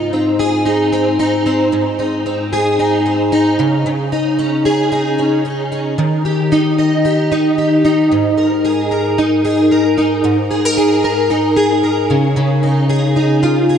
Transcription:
Already playing: G#2 D#4 G#4
0.13 C4
0.39 G#4
0.65 D#4
0.92 C4
1.19 D#4
1.46 C4
1.72 G#2
1.99 D#4
2.26 C4
2.53 G#4
2.79 D#4
3.06 C4
3.32 D#4
3.59 C#3
3.86 C#3
4.12 D#4
4.39 C#4
4.65 G#4
4.92 D#4
5.19 C#4
5.45 D#4
5.72 C#4
5.98 D#3
6.25 G4
6.52 D#4
6.78 D#5
7.05 G4
7.32 D#4
7.58 G4
7.85 D#4
8.12 G#2
8.38 A#4
8.65 G#4
8.91 A#4
9.18 D#4
9.45 G#4
9.71 A#4
9.98 D#4
10.24 G#2
10.51 G#4
10.65 A#4
10.77 G#4
11.04 A#4
11.30 D#4
11.56 G#4
11.83 A#4
12.10 C#3
12.36 C#3
12.63 D#4
12.89 G#4
13.16 D#4
13.43 F4
13.69 G#4

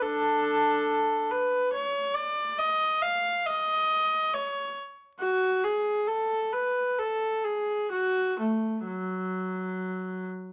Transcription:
0.02 D4 A4
1.31 B4
1.73 C#5
2.15 D5
2.59 D#5
3.02 F5
3.46 D#5
4.34 C#5
5.20 F#4
5.64 G#4
6.07 A4
6.53 B4
6.99 A4
7.44 G#4
7.91 F#4
8.39 A3
8.86 F#3

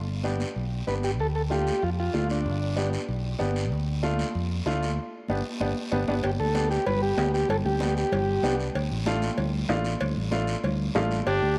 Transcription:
Already playing: G1
0.23 B3 D4 G4, high conga, short guiro
0.40 high conga, short guiro
0.56 B1, long guiro
0.87 G1 B3 D4 G4 B4, high conga, short guiro
1.03 G4, short guiro
1.20 D2 A4, long guiro
1.35 A4
1.50 A3 D4 F4 G4, high conga, short guiro
1.67 high conga, short guiro
1.82 F2 F4, long guiro
2.00 F4
2.14 D2 A3 D4 F4, high conga, short guiro
2.30 D4, short guiro
2.45 G1, long guiro
2.76 B3 D4 G4, high conga, short guiro
2.93 short guiro
3.09 B1, long guiro
3.39 G1 B3 D4 G4, high conga, short guiro
3.56 short guiro
3.72 D2, long guiro
4.03 A3 D4 F4, high conga, short guiro
4.19 high conga, short guiro
4.35 F2, long guiro
4.66 D2 A3 D4 F4, high conga, short guiro
4.83 short guiro
5.28 G1 B3 D4 G4, high conga, long guiro
5.60 G1 B3 D4 G4, high conga, long guiro
5.91 G1 B3 D4 G4, high conga, long guiro
6.08 G1 B3 D4 G4, high conga, long guiro
6.23 G1 G4, cowbell, high conga, long guiro
6.39 D2 A4, high conga
6.54 B3 D4 G4, high conga, short guiro
6.71 G4, short guiro
6.86 G1 B4, cowbell, high conga, low conga, long guiro
7.03 G4
7.17 D2 B3 D4 G4, high conga, low timbale, short guiro
7.34 G4, short guiro
7.49 G1 A4, cowbell, high conga, low conga, long guiro
7.64 D2 G4, high conga
7.80 B3 D4 G4, high conga, short guiro
7.97 G4, short guiro
8.12 G1, cowbell, high conga, low conga, long guiro
8.43 C2 B3 D4 G4, high conga, low conga, short guiro
8.60 short guiro
8.75 D2, cowbell, high conga, long guiro
8.91 A1, high conga
9.06 A3 D4 F4, high conga, short guiro
9.22 high conga, short guiro
9.38 D2, cowbell, high conga, low conga, long guiro
9.69 A1 A3 D4 F4, high conga, low timbale, short guiro
9.85 short guiro
10.00 D2, cowbell, high conga, low conga, long guiro
10.16 A1, high conga
10.31 A3 D4 F4, high conga, short guiro
10.47 short guiro
10.64 D2, cowbell, high conga, low conga, long guiro
10.95 A1 A3 D4 F4, high conga, low conga, low timbale, short guiro
11.11 short guiro
11.27 G1 D4 G4, cowbell, high conga, long guiro
11.42 D2

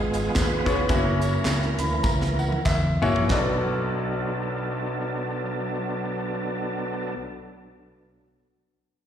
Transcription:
Already playing: G#1 G#3 B3 F4 G#4
0.13 closed hi-hat, tambourine
0.35 D#2 F4 G#4 B4, kick, snare, clap, closed hi-hat, tambourine
0.65 F1 B3 C#4 F4 G#4 C#5, kick, closed hi-hat, tambourine
0.89 F#1 A#3 C#4 E4 F#4 A#4 B4, kick, closed hi-hat, tambourine
0.97 C#5
1.22 closed hi-hat, tambourine
1.45 C#2, snare, clap, closed hi-hat, tambourine
1.62 snare
1.79 D2 E3 A#3 C#4 B5, closed hi-hat, tambourine
2.03 C#2 A#5, kick, snare, tambourine
2.21 snare
2.39 F#5, tambourine
2.52 high tom
2.65 E2 E5, kick, clap, mid tom, tambourine
3.02 A#1 A#3 C#4 E4 F#4 C#5, floor tom, tambourine
3.16 floor tom
3.28 B1 F#3 B3 D4 F#4 A4 D5, kick, snare, clap

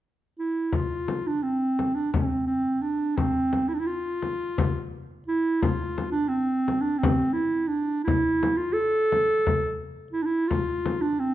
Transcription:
0.39 E4
0.72 F4, frame drum
1.08 frame drum
1.27 D4
1.43 C4
1.79 frame drum
1.95 D4
2.12 C4, frame drum
2.46 C4
2.81 D4
3.16 C4, frame drum
3.53 frame drum
3.68 E4
3.74 D4
3.79 E4
3.86 F4
4.22 frame drum
4.58 frame drum
5.28 E4
5.62 F4, frame drum
5.98 frame drum
6.12 D4
6.28 C4
6.68 frame drum
6.81 D4
6.98 C4
7.03 frame drum
7.33 E4
7.68 D4
8.04 E4, frame drum
8.43 frame drum
8.57 F4
8.73 A4
9.12 frame drum
9.47 frame drum
10.12 E4
10.22 D4 E4
10.47 F4, frame drum
10.86 frame drum
11.01 D4
11.19 C4

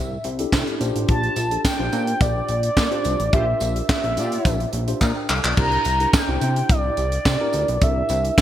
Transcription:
Already playing: C2 E5
0.24 C2, closed hi-hat
0.39 D4 E4 G4 A4, closed hi-hat
0.52 C3, kick, snare, clap, tambourine
0.67 closed hi-hat
0.80 A#1 D4 F4 G4 C5, closed hi-hat, tambourine
0.96 A1, closed hi-hat
1.08 A#1 A5, kick, closed hi-hat
1.23 closed hi-hat
1.36 A#1, closed hi-hat, tambourine
1.51 D4 F4 G4 A4, closed hi-hat
1.65 G5, kick, snare, clap, tambourine
1.79 A#1 D4 F4 G4 C5
1.93 A#2, closed hi-hat, tambourine
2.07 closed hi-hat
2.21 A#1 D5, kick, closed hi-hat, tambourine
2.48 A#1, closed hi-hat
2.63 closed hi-hat
2.77 A#2, kick, snare, clap, tambourine
2.91 D4 F4 G4 C5, closed hi-hat
3.04 C2, closed hi-hat, tambourine
3.20 A1, closed hi-hat
3.33 A#1 D4 F4 G4 A#4 C5 E5, kick, closed hi-hat
3.60 A#1, closed hi-hat, tambourine
3.76 closed hi-hat
3.89 E5, kick, snare, clap, tambourine
4.04 A#1, closed hi-hat
4.17 A#2 F4 G4 D5, closed hi-hat, tambourine
4.32 closed hi-hat
4.45 A#1, kick, closed hi-hat, tambourine
4.60 closed hi-hat
4.73 A#1, closed hi-hat
4.88 D4 F4 G4 C5, closed hi-hat
5.01 A#2 D5 A#5, kick, clap, tambourine
5.16 A#4 G5
5.29 C2 A4 F5, clap, tambourine
5.44 B1 F4 D5, clap
5.57 C2 D4 E4 G4 A#4 A#5, kick, crash
5.72 closed hi-hat
5.85 C2, closed hi-hat, tambourine
6.00 D4 E4 G4 A#4, closed hi-hat
6.13 G5, kick, snare, clap, tambourine
6.28 C2 D4 E4 G4 C5
6.41 C3, closed hi-hat, tambourine
6.56 closed hi-hat
6.69 C2 D5, kick, closed hi-hat, tambourine
6.97 C2, closed hi-hat, tambourine
7.12 closed hi-hat
7.25 C3, kick, snare, clap, tambourine
7.40 D4 E4 G4 A#4
7.53 D2, closed hi-hat, tambourine
7.68 B1, closed hi-hat
7.81 C2 D4 E4 G4 A4 E5, kick, closed hi-hat
7.88 A#4
8.09 C2, closed hi-hat, tambourine
8.25 closed hi-hat
8.38 kick, snare, tambourine

